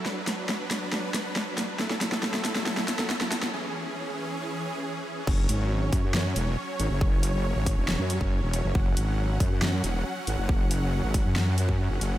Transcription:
<<
  \new Staff \with { instrumentName = "Supersaw synth" } { \time 4/4 \key fis \minor \tempo 4 = 138 << { b'1 | a'1 | gis'1 | cis''1~ |
cis''1 | fis''1~ | fis''1 | } \\ { <fis d'>1 | <fis e'>1 | <e cis'>1 | <fis cis'>1~ |
<fis cis'>1~ | <fis cis'>1~ | <fis cis'>1 | } >> }
  \new Staff \with { instrumentName = "Wobble bass" } { \clef bass \time 4/4 \key fis \minor r1 | r1 | r1 | fis,,8 gis,,4 fis,4 e,,8 r8 gis,,16 fis,,16~ |
fis,,4~ fis,,16 gis,,8 e,,8 fis,8 fis,,8 e,,8 fis,,16 | fis,,8 gis,,4 fis,4 e,,8 r8 gis,,16 fis,,16~ | fis,,4~ fis,,16 gis,,8 fis,4. fis,,16 fis,,8 | }
  \new DrumStaff \with { instrumentName = "Drums" } \drummode { \time 4/4 sn8 <hh sn>8 sn8 <hh sn>8 sn8 <hh sn>8 sn8 <hh sn>8 | sn16 sn16 <hh sn>16 sn16 sn16 sn16 <hh sn>16 sn16 sn16 sn16 <hh sn>16 sn16 sn16 sn16 <hh sn>16 sn16 | r4 r4 r4 r4 | <cymc bd>8 hh8 r8 <hh bd>8 sn8 hh8 r8 hh8 |
bd8 hh8 r8 <hh bd>8 sn8 hh16 bd16 r8 hh8 | bd8 hh8 r8 <hh bd>8 sn8 hh8 r8 hh8 | bd8 hh8 r8 <hh bd>8 sn8 hh16 bd16 r8 hh8 | }
>>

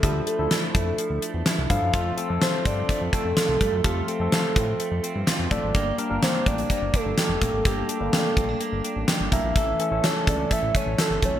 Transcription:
<<
  \new Staff \with { instrumentName = "Soft synth lead" } { \time 4/4 \key f \major \tempo 4 = 126 g'8 a'2 r4 f''8~ | f''8 r8 c''8 d''8 d''8 a'4. | g'8 a'2 r4 d''8~ | d''8 r8 c''8 d''8 d''8 a'4. |
g'8 a'2 r4 e''8~ | e''4 cis''8 d''8 e''8 cis''8 a'8 cis''8 | }
  \new Staff \with { instrumentName = "Clean electric guitar" } { \time 4/4 \key f \major <f a e'>8 a8 e'8 a8 f8 a8 e'8 f8 | <a f'>8 c'8 f'8 c'8 a8 c'8 f'8 a8 | <a f'>8 c'8 f'8 c'8 a8 c'8 f'8 a8 | <bes g'>8 d'8 g'8 d'8 bes8 d'8 g'8 bes8 |
<bes g'>8 d'8 g'8 c'16 d'16 bes8 d'8 g'8 bes8 | <e a'>8 cis'8 a'8 cis'8 a8 cis'8 a'8 a8 | }
  \new Staff \with { instrumentName = "Tine electric piano" } { \time 4/4 \key f \major <f d' e' a'>8 r16 <f d' e' a'>4. r4 r16 <f d' e' a'>16 r16 | <f a c' a'>16 r16 <f a c' a'>16 <f a c' a'>4. r4. r16 | <f a c' a'>8 r16 <f a c' a'>4. r4 r16 <f a c' a'>16 r16 | <g bes d' bes'>16 r16 <g bes d' bes'>16 <g bes d' bes'>4. r4. r16 |
<g bes d' a'>8 r16 <g bes d' g'>4. r4 r16 <g bes d' bes'>16 r16 | <e a cis' a'>16 r16 <e a cis' a'>16 <e a cis' a'>4. r4. r16 | }
  \new Staff \with { instrumentName = "Analog synth bass" } { \clef bass \time 4/4 \key f \major d,8 r16 d,16 r8 f,8 r16 d,16 r16 e,16 r16 c,16 g,16 fis,16 | f,8 r16 f,16 r8 g,8 r16 f,16 r16 f,16 r16 c,16 g,16 fis,16 | f,8 r16 f,16 r8 a,8 r16 f,16 r16 g,16 r16 f,16 a,,16 gis,,16 | g,,8 r16 g,,16 r8 a,,8 r16 g,,16 r16 g,,16 r16 f,,16 a,,16 gis,,16 |
g,,8 r16 g,,16 r8 bes,,8 r16 g,,16 r16 a,,16 r16 g,,16 b,,16 bes,,16 | a,,8 r16 a,,16 r8 cis,8 r16 a,,16 r16 a,,16 r16 g,,16 b,,16 bes,,16 | }
  \new DrumStaff \with { instrumentName = "Drums" } \drummode { \time 4/4 <hh bd>8 hh8 <hh sn>8 <hh bd>8 hh8 hh8 <hh sn>8 <hh bd>8 | <hh bd>8 hh8 <hh sn>8 <hh bd>8 <hh bd>8 <hh bd>8 <hh sn>8 <hh bd>8 | <hh bd>8 hh8 <hh sn>8 <hh bd>8 hh8 hh8 <hh sn>8 <hh bd>8 | <hh bd>8 hh8 <hh sn>8 <hh bd>16 hh16 <hh bd>8 <hh bd>8 <hh sn>8 <hh bd>8 |
<hh bd>8 hh8 <hh sn>8 <hh bd>8 hh8 hh8 <hh sn>8 <hh bd>8 | <hh bd>8 hh8 <hh sn>8 <hh bd>8 <hh bd>8 <hh bd>8 <hh sn>8 <hh bd>8 | }
>>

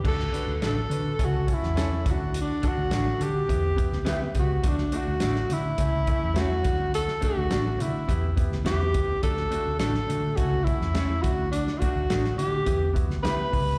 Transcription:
<<
  \new Staff \with { instrumentName = "Clean electric guitar" } { \time 4/4 \key d \major \tempo 4 = 104 r4 <d' fis' a' d''>8 r4. <cis' e' a' cis''>8 r8 | r4 <d' fis' a' d''>8 r4. <e' g' b' e''>8 r8 | r4 <d' fis' a' d''>8 r4. <cis' e' a' cis''>8 r8 | r4 <d' fis' a' d''>8 r4. <e' g' b' e''>8 r8 |
r4 <d' fis' a' d''>8 r4. <cis' e' a' cis''>8 r8 | r4 <d' fis' a' d''>8 r4. <e' g' b' e''>8 r8 | }
  \new Staff \with { instrumentName = "Tenor saxophone" } { \time 4/4 \key d \major a'4 a'4 fis'8 e'4 fis'8 | d'8 fis'4 g'4. r8 fis'8 | d'8 fis'4 e'4. fis'4 | a'8 fis'4 e'4 r8 g'4 |
a'4 a'4 fis'8 e'4 fis'8 | d'8 fis'4 g'4 r8 b'4 | }
  \new Staff \with { instrumentName = "Upright piano" } { \time 4/4 \key d \major <d' fis' a'>8 <d' fis' b'>8 <d' fis' a'>8 <d' fis' b'>8 <cis' e' a'>8 <cis' e' a'>8 <cis' e' a'>8 <d' fis' a'>8~ | <d' fis' a'>8 <d' fis' a'>8 <d' fis' a'>8 <d' fis' a'>8 <b e' g'>8 <b e' g'>8 <b e' g'>8 <b e' g'>8 | <a d' fis'>8 <a d' fis'>8 <a d' fis'>8 <a d' fis'>8 <a cis' e'>8 <a cis' e'>8 <a cis' e'>8 <a d' fis'>8~ | <a d' fis'>8 <a d' fis'>8 <a d' a'>8 <a d' fis'>8 <b e' g'>8 <b e' g'>8 <b e' g'>8 <b e' g'>8 |
<a d' fis'>8 <a d' fis'>8 <a d' fis'>8 <a d' fis'>8 <a cis' e'>8 <a cis' e'>8 <a cis' e'>8 <a d' fis'>8~ | <a d' fis'>8 <a d' fis'>8 <a d' fis'>8 <a d' e'>8 <b e' g'>8 <b e' fis'>8 <b e' g'>8 <b e' g'>8 | }
  \new Staff \with { instrumentName = "Fingered electric bass" } { \clef bass \time 4/4 \key d \major d,8 r16 d,16 a,,8 d8 cis,8. e,8. d,8~ | d,8 r16 d,16 a,,8 d8 e,8. d,8. cis,8 | d,8 r16 d,16 a,,8 d8 cis,8. e,8. d,8~ | d,8 r16 d,16 a,,8 d8 e,8. d,16 e,8 d,8 |
d,8 r16 d,16 a,,8 d8 cis,8. e,8. d,8~ | d,8 r16 d,16 a,,8 d8 e,8. d,8. cis,8 | }
  \new DrumStaff \with { instrumentName = "Drums" } \drummode { \time 4/4 <cymc bd>16 sn16 hh8 <hh sn>8 hh8 <hh bd>8 <hh bd>16 sn16 <hh sn>8 <hh bd>8 | hh8 <hh bd>8 <hh sn>8 hh8 <hh bd>8 <hh bd>16 sn16 <hh sn>8 <hh bd>8 | <hh bd>16 sn16 hh8 <hh sn>16 sn16 hh8 <hh bd>8 <hh bd>8 <hh sn>8 <hh bd>8 | hh16 sn16 <hh bd>8 <hh sn>8 hh8 <hh bd>8 <hh bd>16 sn16 <hh sn>8 <hh bd>8 |
<hh bd>16 sn16 hh8 <hh sn>16 sn16 hh8 <hh bd>8 <hh bd>16 sn16 <hh sn>8 <hh bd>8 | hh16 sn16 <hh bd>8 <hh sn>16 sn16 hh8 <hh bd>8 <hh bd>16 sn16 <hh sn>8 <hho bd>8 | }
>>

